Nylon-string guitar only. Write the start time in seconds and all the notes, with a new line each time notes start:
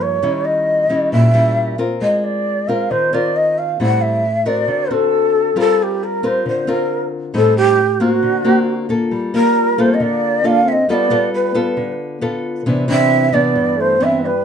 Already playing: G2 F3 A#3 D#4
0.23 D#3 G3 C#4 E4
0.89 G3 C#4 E4
1.12 A#2
1.34 G3 C#4 E4
1.78 C4 F4 A#4
2.01 G#3
2.68 C4 F4 A#4
2.91 D#3
3.13 C4 F4 A#4
3.80 A2 G3 C4 E4
4.45 C4 F#4 A#4
4.68 D3
4.91 C4 F#4
5.56 G3 C4 F4 A#4
6.23 C4 F4 A#4
6.46 D3
6.67 C4 F4 A#4
7.34 A2 G3 C4 D#4
8.00 A#3 C4 F#4
8.22 D3
8.45 A#3 C4 F#4
8.89 A#3 F4 A4
9.11 G3
9.34 A#3 F4
9.78 A#3 F4 A4
10.00 D3
10.44 A#3 F4 A4
10.89 G3 B3 F4 A4
11.10 B3 F4 A4
11.54 B3 F4 A4
11.77 D3
12.21 B3 F4 A4
12.66 C3 E3 B3 D4
12.88 E3 D4
13.32 E3 B3 D4
13.55 G2
14.00 E3 B3 D4